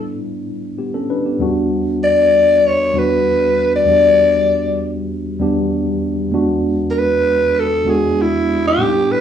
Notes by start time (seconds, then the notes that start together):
Already playing: A2 G3 B3 D4 E4 A4
0.79 B3 G4
0.94 C#4 A4
1.10 D4 B4
1.26 B3 G4
1.39 E2 G3 B3 D4 F#4
2.04 D5
2.67 C#5
2.93 E2 G3 B3 D4 F#4
2.98 B4
3.76 D5
3.85 E2 G3 B3 D4 G4
5.39 E2 G3 B3 D4 G4
6.32 E2 G#3 B3 D4 F#4
6.91 A#4
6.98 B4
7.60 A4
7.85 E2 G#3 B3 D4 F#4
7.90 G#4
8.22 E4
8.68 G4
8.77 A2 G3 B3 D4 D#4
8.87 E4
9.12 B4